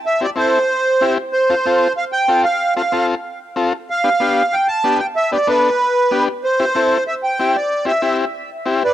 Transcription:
<<
  \new Staff \with { instrumentName = "Accordion" } { \time 4/4 \key c \major \tempo 4 = 188 e''8 d''8 c''2~ c''8 r8 | c''2 f''8 g''4 f''8~ | f''8 f''4 r2 r8 | f''2 g''8 a''4 g''8 |
e''8 d''8 b'2~ b'8 r8 | c''2 e''8 g''4 d''8~ | d''8 e''4 r2 <b' d''>8 | }
  \new Staff \with { instrumentName = "Transistor combo organ" } { \time 4/4 \key c \major r8 <c' e' g'>8 <c' e' a'>8 r4. <c' e' g'>8 r8 | r8 <c' f' a'>8 <c' f' a'>8 r4. <c' f' a'>8 r8 | r8 <c' f' a'>8 <c' f' a'>8 r4. <c' f' a'>8 r8 | r8 <b d' g'>8 <b d' g'>8 r4. <b d' g'>8 r8 |
r8 <b d' g'>8 <b d' a'>8 r4. <b d' g'>8 r8 | r8 <c' e' g'>8 <c' e' a'>8 r4. <c' e' g'>8 r8 | r8 <c' e' g'>8 <c' e' g'>8 r4. <c' e' g'>8 r8 | }
>>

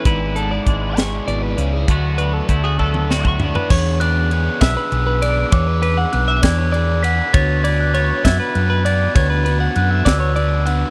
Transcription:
<<
  \new Staff \with { instrumentName = "Glockenspiel" } { \time 6/8 \key e \mixolydian \tempo 4. = 66 r2. | r2. | r8 fis'''4 e'''4 r8 | d'''4 fis'''8 gis'''4 b'''8 |
a'''8 gis'''16 fis'''16 a'''8 gis'''8 fis'''8 a'''8 | gis'''4 fis'''8 e'''4 r8 | }
  \new Staff \with { instrumentName = "Clean electric guitar" } { \time 6/8 \key e \mixolydian b'8 a'16 d''8 b'16 cis'''8 d''16 b'8 gis'16 | fis'8 b'16 a'8 gis'16 a'8 b'16 cis'''8 b'16 | cis''8 d''8 cis''8 e''16 b'8 b'16 d''8 | cis''16 b'16 b'16 fis''8 e''16 d''16 cis''16 d''8 fis''8 |
cis''8 d''8 cis''8 e''16 b'8 b'16 d''8 | cis''16 b'16 b'16 fis''8 e''16 d''16 cis''16 d''8 fis''8 | }
  \new Staff \with { instrumentName = "Overdriven electric guitar" } { \time 6/8 \key e \mixolydian <gis b e' gis' d''>8 <e' gis' d''>4 <gis b e' gis' d''>8 <b e' gis' d''>8 <e' gis' d''>8 | <d fis a d' fis' d''>8 <a d' fis' d''>4 <d fis a d' fis' d''>8 <a d' fis' d''>8 <a d' fis' d''>8 | <b d' gis' b'>8 <b d' gis' b'>8 <b d' gis' b'>8 <b d' gis' b'>8 <b d' gis' b'>8 <b d' gis' b'>8 | <b d' gis' b'>8 <b d' gis' b'>8 <b d' gis' b'>8 <b d' gis' b'>8 <b d' gis' b'>8 <b d' gis' b'>8 |
<b d' fis' b'>8 <b d' fis' b'>8 <b d' fis' b'>8 <b d' fis' b'>8 <b d' fis' b'>8 <b d' fis' b'>8 | <b d' fis' b'>8 <b d' fis' b'>8 <b d' fis' b'>8 <b d' fis' b'>8 <b d' fis' b'>8 <b d' fis' b'>8 | }
  \new Staff \with { instrumentName = "Clean electric guitar" } { \time 6/8 \key e \mixolydian << { e'8 b8 d'2 | <a b fis'>8 b8 e'16 fis'16 b8 fis'8 b8~ | b2. | r2. |
r2. | r2. | } \\ { gis,4 gis4 b,8 cis8 | d4 a4 a,4 | r2. | r2. |
r2. | r2. | } >> }
  \new Staff \with { instrumentName = "Fingered electric bass" } { \clef bass \time 6/8 \key e \mixolydian gis,,4 gis,,4 gis,,8 cis,8 | d,4 d,2 | e,4. b,,16 r16 b,,4 | e,4 b,,8 e,4. |
d,4. fis,16 r16 fis,4 | d,4 fis,8 d,4. | }
  \new DrumStaff \with { instrumentName = "Drums" } \drummode { \time 6/8 <hh bd>8 hh8 <hh bd>8 <hh sn>8 hh8 hh8 | <hh bd>8 hh8 <hh bd>8 bd16 tommh16 sn16 bd16 tomfh16 tomfh16 | <cymc bd>8 cymr8 cymr8 <bd cymr sn>8 cymr8 cymr8 | <bd cymr>8 cymr8 cymr8 <bd cymr sn>8 cymr8 cymr8 |
<bd cymr>8 cymr8 cymr8 <bd cymr sn>8 cymr8 cymr8 | <bd cymr>8 cymr8 cymr8 <bd cymr sn>8 cymr8 cymr8 | }
>>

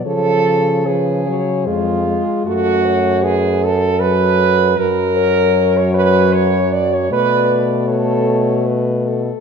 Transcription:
<<
  \new Staff \with { instrumentName = "French horn" } { \time 3/4 \key fis \minor \tempo 4 = 77 cis''4 b'8 cis''8 gis'4 | a'8 cis''8 b'8 r8 a'4 | ais'8 cis''2~ cis''8 | d''4 cis''4 b'8 a'8 | }
  \new Staff \with { instrumentName = "French horn" } { \time 3/4 \key fis \minor a'4 gis'4 eis'4 | fis'4 gis'8 a'8 b'4 | ais'4~ ais'16 cis''16 b'8 cis''8 d''16 cis''16 | b'8. r16 a'4 r4 | }
  \new Staff \with { instrumentName = "French horn" } { \clef bass \time 3/4 \key fis \minor eis4 eis8 fis8 gis8 gis8 | a4. r8 fis4 | fis2. | a2. | }
  \new Staff \with { instrumentName = "French horn" } { \clef bass \time 3/4 \key fis \minor cis2 eis,8 r8 | fis,2. | fis,2. | b,2. | }
>>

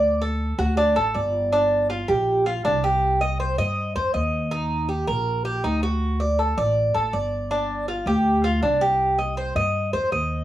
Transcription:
<<
  \new Staff \with { instrumentName = "Cuban tres" } { \time 4/4 \key g \minor \tempo 4 = 160 d''8 a'4 fis'8 d'8 a'8 d''4 | d'4 f'8 g'4 f'8 d'8 g'8~ | g'8 ees''8 c''8 ees''4 c''8 ees''4 | ees'4 g'8 bes'4 g'8 ees'8 fis'8~ |
fis'8 d''8 a'8 d''4 a'8 d''4 | d'4 f'8 g'4 f'8 d'8 g'8~ | g'8 ees''8 c''8 ees''4 c''8 ees''4 | }
  \new Staff \with { instrumentName = "Upright bass" } { \clef bass \time 4/4 \key g \minor d,4. d,4 a,,8 g,,4~ | g,,4. bes,,4. c,4~ | c,4. g,4 f,8 ees,4~ | ees,4. bes,,4. d,4~ |
d,4. a,,4 a,,8 g,,4~ | g,,4. d,4. c,4~ | c,4. g,4 f,8 ees,4 | }
>>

